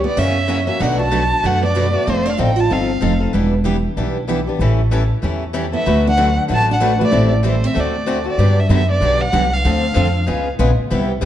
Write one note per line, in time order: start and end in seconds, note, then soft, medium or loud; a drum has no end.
0.04 0.17 B3 medium
0.04 0.20 D5 medium
0.17 0.68 F#2 medium
0.17 0.37 C#3 medium
0.17 0.37 E3 medium
0.17 0.36 F#3 medium
0.17 0.37 A#3 medium
0.17 0.66 C#4 medium
0.17 0.37 C#4 medium
0.17 0.37 E4 medium
0.17 0.37 F#4 medium
0.17 0.37 A#4 medium
0.17 0.67 E5 medium
0.47 0.59 C#3 medium
0.47 0.59 E3 medium
0.47 0.59 F#3 medium
0.47 0.59 A#3 medium
0.47 0.59 C#4 medium
0.47 0.60 E4 medium
0.47 0.60 F#4 medium
0.47 0.60 A#4 loud
0.67 0.80 A#3 soft
0.67 0.83 C#4 medium
0.67 0.80 C#4 medium
0.67 0.80 F#4 soft
0.67 0.82 E5 medium
0.80 1.31 B1 medium
0.80 1.00 B2 medium
0.80 1.00 F#3 medium
0.80 1.00 A3 medium
0.80 1.00 D4 medium
0.80 0.99 D4 medium
0.80 1.00 F#4 medium
0.80 1.00 B4 medium
0.80 0.99 F#5 medium
0.99 1.44 F#4 medium
0.99 1.48 A5 medium
1.11 1.22 B2 medium
1.11 1.22 F#3 medium
1.11 1.22 A3 medium
1.11 1.22 D4 medium
1.11 1.23 F#4 medium
1.11 1.23 B4 medium
1.42 1.94 F#2 medium
1.42 1.63 B2 medium
1.42 1.63 F#3 medium
1.42 1.63 A3 medium
1.42 1.63 D4 medium
1.42 1.64 D4 medium
1.42 1.64 F#4 medium
1.42 1.64 B4 medium
1.42 1.64 F#5 medium
1.63 2.04 B3 medium
1.63 2.11 D5 medium
1.76 1.86 B2 medium
1.76 1.86 F#3 medium
1.76 1.86 A3 medium
1.76 1.86 D4 medium
1.76 1.87 F#4 medium
1.76 1.86 B4 medium
1.93 2.07 A3 soft
1.93 2.07 D4 soft
1.93 2.06 F#4 soft
2.06 2.33 F1 medium
2.06 2.26 F3 medium
2.06 2.25 A3 medium
2.06 2.27 C4 medium
2.06 2.27 D#4 medium
2.06 2.27 A4 medium
2.06 2.31 C5 medium
2.25 2.39 D4 medium
2.30 2.41 F5 medium
2.38 2.66 A1 medium
2.38 2.49 F3 medium
2.38 2.50 C4 medium
2.38 2.56 D#4 medium
2.38 2.49 D#4 medium
2.38 2.50 A4 medium
2.38 2.61 G5 medium
2.56 2.71 F4 medium
2.56 2.74 A5 medium
2.70 2.97 G1 medium
2.70 2.90 F3 medium
2.70 2.90 C4 medium
2.70 3.21 C4 medium
2.70 2.90 D#4 medium
2.70 2.90 A4 medium
2.70 3.22 F5 medium
3.01 3.29 F1 medium
3.01 3.12 F3 medium
3.01 3.13 C4 medium
3.01 3.13 D#4 medium
3.01 3.13 A4 medium
3.20 3.33 C4 soft
3.20 3.34 D#4 soft
3.20 3.33 A4 soft
3.33 3.84 E1 medium
3.33 3.53 E3 medium
3.33 3.54 G3 medium
3.33 3.53 B3 medium
3.33 3.53 D4 medium
3.33 3.54 E4 medium
3.33 3.53 G4 medium
3.33 3.54 B4 medium
3.64 3.75 E3 medium
3.64 3.76 G3 medium
3.64 3.76 B3 medium
3.64 3.76 D4 medium
3.64 3.76 E4 medium
3.64 3.76 G4 medium
3.64 3.76 B4 medium
3.96 4.47 B1 medium
3.96 4.17 E3 medium
3.96 4.17 G3 medium
3.96 4.17 B3 medium
3.96 4.17 D4 medium
3.96 4.17 E4 medium
3.96 4.17 G4 medium
3.96 4.17 B4 medium
4.28 4.39 E3 medium
4.28 4.39 G3 medium
4.28 4.39 B3 medium
4.28 4.39 D4 medium
4.28 4.40 E4 medium
4.28 4.39 G4 medium
4.28 4.40 B4 medium
4.47 4.60 B3 soft
4.47 4.60 D4 soft
4.47 4.59 G4 soft
4.59 5.10 A1 medium
4.59 4.80 E3 medium
4.59 4.80 G3 medium
4.59 4.81 C#4 medium
4.59 4.80 E4 medium
4.59 4.81 A4 medium
4.91 5.02 E3 medium
4.91 5.02 G3 medium
4.91 5.02 C#4 medium
4.91 5.03 E4 medium
4.91 5.03 A4 medium
5.22 5.73 E2 medium
5.22 5.42 E3 medium
5.22 5.43 G3 medium
5.22 5.43 C#4 medium
5.22 5.43 E4 medium
5.22 5.43 A4 medium
5.53 5.65 E3 medium
5.53 5.65 G3 medium
5.53 5.65 C#4 medium
5.53 5.65 E4 medium
5.53 5.65 A4 medium
5.72 6.03 B3 medium
5.72 5.86 C#4 soft
5.72 5.86 E4 soft
5.72 5.85 A4 soft
5.72 6.04 E5 medium
5.86 6.37 D2 medium
5.86 6.06 D3 medium
5.86 6.06 F#3 medium
5.86 6.06 A3 medium
5.86 6.06 D4 medium
5.86 6.06 F#4 medium
5.86 6.06 B4 medium
6.07 6.36 D4 medium
6.07 6.36 F#5 medium
6.17 6.28 D3 medium
6.17 6.28 F#3 medium
6.17 6.28 A3 medium
6.17 6.28 D4 medium
6.17 6.29 F#4 medium
6.17 6.29 B4 medium
6.48 7.00 A1 medium
6.48 6.68 D3 medium
6.48 6.69 F#3 medium
6.48 6.69 A3 medium
6.48 6.69 D4 medium
6.48 6.69 F#4 medium
6.48 6.68 F#4 medium
6.48 6.69 B4 medium
6.54 6.69 A5 loud
6.71 6.99 D4 medium
6.71 7.00 F#5 medium
6.80 6.91 D3 medium
6.80 6.91 F#3 medium
6.80 6.92 A3 medium
6.80 6.92 D4 medium
6.80 6.92 F#4 medium
6.80 6.92 B4 medium
6.98 7.12 A3 soft
6.98 7.30 A3 medium
6.98 7.11 D4 soft
6.98 7.12 F#4 soft
6.98 7.11 B4 soft
7.04 7.31 D5 medium
7.12 7.63 A1 medium
7.12 7.32 E3 medium
7.12 7.32 G3 medium
7.12 7.32 C4 medium
7.12 7.32 E4 medium
7.12 7.32 A4 medium
7.43 7.54 E3 medium
7.43 7.54 G3 medium
7.43 7.64 A3 medium
7.43 7.55 C4 medium
7.43 7.55 E4 medium
7.43 7.55 A4 medium
7.48 7.68 C5 medium
7.64 7.77 C4 medium
7.64 7.81 E5 medium
7.74 8.26 D2 medium
7.74 7.94 D3 medium
7.74 7.95 A3 medium
7.74 8.27 A3 medium
7.74 7.95 C4 medium
7.74 7.95 F#4 medium
7.74 7.95 A4 medium
7.80 8.28 D5 medium
8.06 8.17 D3 medium
8.06 8.18 A3 medium
8.06 8.17 C4 medium
8.06 8.18 F#4 medium
8.06 8.18 A4 medium
8.24 8.39 C4 soft
8.24 8.38 F#4 soft
8.24 8.37 A4 soft
8.30 8.61 D5 medium
8.38 8.69 G2 medium
8.38 8.58 D3 medium
8.38 8.58 F#3 medium
8.38 8.59 B3 medium
8.38 8.59 D4 medium
8.38 8.59 G4 medium
8.60 8.71 E5 medium
8.69 9.00 F#2 medium
8.69 8.81 D3 medium
8.69 8.81 F#3 medium
8.69 8.81 B3 medium
8.69 8.81 D4 medium
8.69 8.81 G4 medium
8.69 8.89 E5 medium
8.91 9.23 D5 medium
9.01 9.32 B1 medium
9.01 9.21 D3 medium
9.01 9.21 F#3 medium
9.01 9.22 B3 medium
9.01 9.21 D4 medium
9.01 9.22 G4 medium
9.21 9.55 F#5 loud
9.32 9.64 C2 medium
9.32 9.43 D3 medium
9.32 9.44 F#3 medium
9.32 9.44 B3 medium
9.32 9.44 D4 medium
9.32 9.44 G4 medium
9.53 10.47 F5 medium
9.65 9.95 D2 medium
9.65 9.84 D3 medium
9.65 9.85 F3 medium
9.65 9.85 C4 medium
9.65 9.85 D4 medium
9.65 9.85 A4 medium
9.94 10.27 F2 medium
9.94 10.06 D3 medium
9.94 10.06 F3 medium
9.94 10.07 C4 medium
9.94 10.07 D4 medium
9.94 10.07 A4 loud
10.27 10.59 C#2 medium
10.27 10.47 C#3 medium
10.27 10.47 G#3 medium
10.27 10.47 B3 medium
10.27 10.48 F4 medium
10.27 10.48 G#4 medium
10.59 10.77 A#1 medium
10.59 10.70 C#3 medium
10.59 10.70 G#3 medium
10.59 10.70 B3 medium
10.59 10.70 F4 medium
10.59 10.70 G#4 medium
10.79 muted upright bass stroke soft
10.90 11.22 C2 medium
10.90 11.10 C3 medium
10.90 11.11 G3 medium
10.90 11.11 B3 medium
10.90 11.11 E4 medium
10.90 11.11 G4 medium
11.21 11.25 C3 medium
11.21 11.25 G3 loud
11.21 11.25 B3 medium
11.21 11.25 E4 medium